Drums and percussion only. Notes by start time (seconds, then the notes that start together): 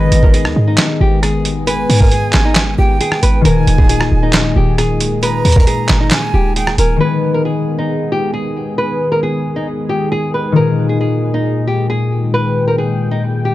0.12 closed hi-hat
0.23 kick
0.34 closed hi-hat
0.45 cross-stick
0.78 snare, clap, closed hi-hat
1.23 cross-stick, closed hi-hat
1.45 closed hi-hat
1.67 closed hi-hat
1.90 open hi-hat
2.01 kick
2.12 closed hi-hat
2.33 snare, clap
2.55 snare, clap, closed hi-hat
3.01 closed hi-hat
3.12 cross-stick
3.23 closed hi-hat
3.45 closed hi-hat
3.67 closed hi-hat
3.78 kick
3.89 closed hi-hat
4.01 cross-stick
4.33 snare, clap, closed hi-hat
4.78 cross-stick, closed hi-hat
5.00 closed hi-hat
5.23 closed hi-hat
5.45 closed hi-hat, open hi-hat
5.52 kick, closed hi-hat
5.60 closed hi-hat
5.67 closed hi-hat
5.89 snare, clap
6.11 snare, clap, closed hi-hat
6.56 closed hi-hat
6.67 cross-stick
6.78 closed hi-hat